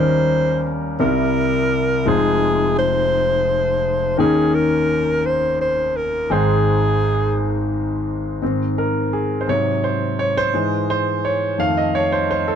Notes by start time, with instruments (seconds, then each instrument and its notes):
Already playing: grand piano D#2 D#3 G3 C#4 D#4 A#4, alto saxophone C5
1.00 grand piano C2 C3 G3 C4 D#4 A#4, alto saxophone A#4
1.06 grand piano E4
2.05 grand piano F1 F2 G#3 D#4 F4 C5, alto saxophone G#4
2.79 alto saxophone C5
4.17 grand piano D#2 D#3 A#3 C#4 D#4 G5, alto saxophone G#4
4.55 alto saxophone A#4
5.26 alto saxophone C5
5.61 alto saxophone C5
5.96 alto saxophone A#4
6.30 grand piano G#1 G#2 G#3 D#4 C5 G5, alto saxophone G#4
8.42 grand piano G#2 D#3 C4
8.78 grand piano A#4
9.13 grand piano G#4
9.41 grand piano C5
9.47 grand piano G#2 C3 F#3 C#5
9.84 grand piano C5
10.19 grand piano C#5
10.37 grand piano C5
10.54 grand piano G#2 E3 G#3
10.90 grand piano C5
11.25 grand piano C#5
11.58 grand piano F2 D#3 A3 F5
11.77 grand piano D#5
11.95 grand piano C#5
12.12 grand piano C5
12.31 grand piano C5
12.48 grand piano A4